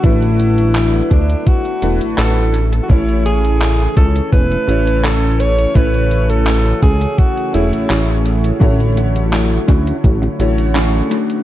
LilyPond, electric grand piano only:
\new Staff \with { instrumentName = "Electric grand piano" } { \time 4/4 \key a \major \tempo 4 = 84 <a d' e' fis' b'>2~ <a d' e' fis' b'>8 <a d' e' fis' b'>4 r8 | <a cis' e' cis''>2~ <a cis' e' cis''>8 <a cis' e' a' cis''>4. | <a cis' e' cis''>2~ <a cis' e' cis''>8 <a cis' e' gis' cis''>4. | <d a e' fis' cis''>2~ <d a e' fis' cis''>8 <d a e' fis' cis''>4 r8 | }